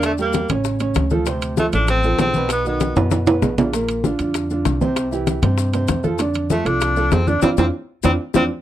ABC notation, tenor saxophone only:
X:1
M:4/4
L:1/8
Q:1/4=195
K:F
V:1 name="Tenor saxophone"
A, B,2 z4 z | z2 A, D C2 C2 | =B, B,2 z4 z | z8 |
z8 | z2 A, D3 C D | C C z2 C z C z |]